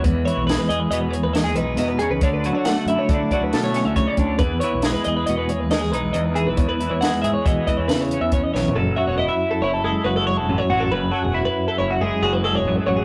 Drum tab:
HH |x--x--x--x--x--x--x--x--x--x--|x--x--x--x--x--x--x--x--x--x--|x--x--x--x--x--x--x--x--x--x--|x--x--x--x--x--x--x--x--x-----|
SD |------o-----------o-----o-----|------o-----------o--o--------|------o-----------o-----------|------o-----------o--------o--|
FT |------------------------------|------------------------------|------------------------------|-----------------------------o|
BD |o-----------------------------|o-----------o--o--------o--o--|o-----------------------------|o-----------o--o--------o-----|

HH |------------------------------|------------------------------|
SD |------------------------------|------------------------------|
FT |------------------------------|------------------------------|
BD |------------------------------|------------------------------|